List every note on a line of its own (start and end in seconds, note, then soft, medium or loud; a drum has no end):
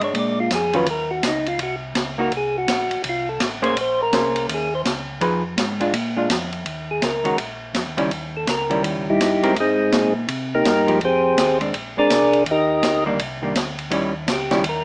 0.00 0.13 G#2 medium
0.00 0.48 G#3 medium
0.00 0.48 D4 medium
0.00 0.15 C#5 loud
0.00 ride soft
0.14 0.49 A#2 medium
0.14 kick soft
0.14 ride medium
0.19 0.39 D5 medium
0.40 0.51 F4 medium
0.51 0.86 F2 medium
0.51 kick soft
0.51 snare medium
0.51 hi-hat pedal medium
0.51 ride medium
0.55 0.75 G#4 medium
0.73 0.85 D#3 medium
0.73 0.86 F#3 medium
0.73 0.86 C#4 medium
0.73 0.86 F4 medium
0.73 0.88 B4 medium
0.73 ride soft
0.86 1.22 D#2 medium
0.86 kick soft
0.86 ride medium
0.91 1.11 A#4 medium
1.11 1.23 F#4 medium
1.23 1.58 C#2 medium
1.23 kick soft
1.23 snare medium
1.23 hi-hat pedal medium
1.23 ride medium
1.27 1.48 D#4 medium
1.46 1.60 F4 medium
1.46 ride soft
1.59 1.94 C2 medium
1.59 kick soft
1.59 ride medium
1.63 1.76 F#4 medium
1.95 2.31 C#2 medium
1.95 kick soft
1.95 snare medium
1.95 hi-hat pedal soft
1.95 ride medium
2.18 2.30 A#3 medium
2.18 2.31 D#4 medium
2.18 2.31 F#4 medium
2.18 2.33 A#4 medium
2.31 2.67 C2 medium
2.31 kick soft
2.31 ride soft
2.37 2.57 G#4 medium
2.58 3.02 F#4 medium
2.68 2.89 A#1 medium
2.68 kick soft
2.68 snare medium
2.68 hi-hat pedal medium
2.68 ride medium
2.90 2.97 A#1 soft
2.90 ride soft
3.04 3.39 C2 medium
3.04 kick soft
3.04 ride medium
3.09 3.29 F4 medium
3.29 3.41 A4 medium
3.40 3.75 A1 medium
3.40 kick soft
3.40 snare medium
3.40 hi-hat pedal medium
3.40 ride medium
3.62 3.75 A#3 medium
3.62 3.75 C#4 medium
3.62 3.75 G#4 medium
3.62 3.75 C5 medium
3.62 3.77 C#5 medium
3.62 ride soft
3.76 4.11 A#1 medium
3.76 kick soft
3.76 ride medium
3.81 4.01 C5 medium
4.02 4.47 A#4 medium
4.12 4.48 C2 medium
4.12 4.68 A#3 soft
4.12 4.68 C#4 medium
4.12 4.68 G#4 medium
4.12 4.68 C5 medium
4.12 kick soft
4.12 snare medium
4.12 hi-hat pedal medium
4.12 ride medium
4.36 ride soft
4.49 4.84 D#2 medium
4.49 kick soft
4.49 ride medium
4.54 4.74 G#4 medium
4.75 4.82 C5 medium
4.85 5.20 C#2 medium
4.85 kick soft
4.85 snare medium
4.85 hi-hat pedal medium
4.85 ride medium
5.21 5.56 F2 medium
5.21 5.42 F3 medium
5.21 5.42 D#4 medium
5.21 5.42 G#4 medium
5.21 5.42 B4 medium
5.21 kick soft
5.21 ride medium
5.57 5.92 G#2 medium
5.57 kick soft
5.57 snare medium
5.57 hi-hat pedal medium
5.57 ride medium
5.80 5.92 G#3 medium
5.80 5.92 D4 medium
5.80 5.93 F4 medium
5.80 ride soft
5.93 6.28 A#2 medium
5.93 kick soft
5.93 ride medium
6.17 6.28 G#3 medium
6.17 6.28 D4 medium
6.17 6.29 F4 medium
6.29 6.65 F2 medium
6.29 kick soft
6.29 snare medium
6.29 hi-hat pedal medium
6.29 ride medium
6.53 ride soft
6.66 7.01 D#2 medium
6.66 kick soft
6.66 ride medium
6.91 7.03 G#4 medium
7.02 7.23 C#2 medium
7.02 7.37 A#4 medium
7.02 kick soft
7.02 snare medium
7.02 hi-hat pedal medium
7.02 ride medium
7.24 7.32 C#2 soft
7.24 7.36 D#3 medium
7.24 7.37 G#3 medium
7.24 7.37 C#4 medium
7.24 7.37 F#4 medium
7.24 ride soft
7.38 7.73 A#1 medium
7.38 kick soft
7.38 ride medium
7.74 7.86 F2 medium
7.74 kick soft
7.74 snare medium
7.74 hi-hat pedal medium
7.74 ride medium
7.86 7.98 D#2 soft
7.97 8.10 C#2 medium
7.97 8.09 D#3 medium
7.97 8.09 G3 medium
7.97 8.10 C#4 medium
7.97 8.10 E4 medium
7.97 ride soft
8.11 8.46 D#2 medium
8.11 kick soft
8.11 ride soft
8.37 8.48 A4 medium
8.47 8.82 C#2 medium
8.47 8.83 A#4 medium
8.47 kick soft
8.47 snare medium
8.47 hi-hat pedal medium
8.47 ride medium
8.70 9.17 D#3 medium
8.70 9.17 G3 medium
8.70 9.17 C#4 medium
8.70 9.17 E4 medium
8.70 ride soft
8.84 8.95 D#2 medium
8.84 kick soft
8.84 ride medium
8.95 9.07 C#2 medium
9.07 9.18 A#1 medium
9.07 9.54 G3 medium
9.07 9.54 D#4 medium
9.07 9.54 E4 medium
9.07 9.54 G4 medium
9.20 9.41 G2 medium
9.20 kick soft
9.20 snare medium
9.20 hi-hat pedal medium
9.20 ride medium
9.43 9.49 G2 soft
9.43 9.55 G#3 medium
9.43 9.55 C4 medium
9.43 9.55 G4 medium
9.43 9.55 A#4 medium
9.43 ride soft
9.56 9.91 G#2 medium
9.56 kick soft
9.56 ride medium
9.60 10.13 G#3 medium
9.60 10.14 C4 medium
9.60 10.14 D#4 medium
9.60 10.13 G#4 medium
9.92 10.27 A#2 medium
9.92 kick soft
9.92 snare medium
9.92 hi-hat pedal medium
9.92 ride medium
10.28 10.63 C3 loud
10.28 kick soft
10.28 ride medium
10.55 10.99 A#3 medium
10.55 10.99 D#4 medium
10.55 11.00 G4 medium
10.55 10.99 A#4 medium
10.65 11.00 G2 loud
10.65 kick soft
10.65 snare medium
10.65 hi-hat pedal medium
10.65 ride medium
10.87 10.99 F3 medium
10.87 10.99 G#3 medium
10.87 10.99 D#4 medium
10.87 11.00 G4 medium
10.87 ride soft
11.01 11.36 F2 medium
11.01 kick soft
11.01 ride soft
11.05 11.59 C4 medium
11.05 11.58 G4 medium
11.05 11.59 G#4 medium
11.05 11.58 C5 medium
11.37 11.72 D#2 medium
11.37 kick soft
11.37 snare medium
11.37 hi-hat pedal medium
11.37 ride medium
11.60 11.72 G#3 medium
11.60 11.72 C4 medium
11.60 11.73 D4 medium
11.60 ride soft
11.74 12.09 A#1 medium
11.74 kick soft
11.74 ride medium
11.97 12.09 G#3 soft
11.97 12.09 C4 medium
11.97 12.09 D4 medium
11.97 12.44 D4 medium
11.97 12.44 G#4 medium
11.97 12.44 A#4 medium
11.97 12.44 D5 medium
12.10 12.45 C2 medium
12.10 kick soft
12.10 snare medium
12.10 hi-hat pedal medium
12.10 ride medium
12.33 ride soft
12.46 12.81 D#2 medium
12.46 kick soft
12.46 ride medium
12.51 13.04 D#4 medium
12.51 13.04 G4 medium
12.51 13.04 A#4 medium
12.51 13.04 D#5 medium
12.82 13.18 D2 medium
12.82 kick soft
12.82 snare medium
12.82 hi-hat pedal medium
12.82 ride medium
13.06 13.18 D#3 medium
13.06 13.18 G3 medium
13.06 13.18 A#3 medium
13.06 13.18 D4 medium
13.19 13.54 C2 medium
13.19 kick soft
13.19 ride medium
13.42 13.54 D#3 medium
13.42 13.54 G3 medium
13.42 13.54 A#3 medium
13.42 13.54 D4 medium
13.55 13.90 D2 medium
13.55 kick soft
13.55 snare medium
13.55 hi-hat pedal medium
13.55 ride medium
13.79 ride soft
13.90 14.27 D#2 medium
13.90 14.12 D#3 medium
13.90 14.12 G3 medium
13.90 14.13 C#4 medium
13.90 14.13 E4 medium
13.90 kick soft
13.90 ride medium
14.27 14.63 C#2 medium
14.27 kick soft
14.27 snare medium
14.27 hi-hat pedal medium
14.27 ride medium
14.33 14.64 G4 medium
14.51 14.63 D#3 medium
14.51 14.63 G3 medium
14.51 14.63 C#4 medium
14.51 14.63 E4 medium
14.51 snare medium
14.51 ride soft
14.64 14.84 D#2 loud
14.64 kick soft
14.64 ride medium
14.69 14.84 A#4 medium